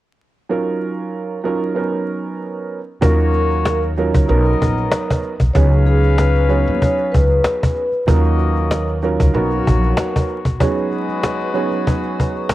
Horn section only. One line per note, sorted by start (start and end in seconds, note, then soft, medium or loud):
3.02 3.95 A#3 medium
3.02 3.95 F#4 medium
3.02 3.95 C#5 medium
4.26 5.20 B3 medium
4.26 5.20 A#4 medium
4.26 5.20 D#5 loud
5.53 7.71 C#4 loud
5.53 7.71 B4 loud
5.53 7.71 F5 loud
8.10 9.01 A#3 medium
8.10 9.01 F#4 medium
8.10 9.01 D#5 loud
9.34 10.27 A#3 medium
9.34 10.27 F#4 medium
9.34 10.27 C#5 loud
10.59 12.54 G#3 medium
10.59 12.54 F#4 loud
10.59 12.54 B4 loud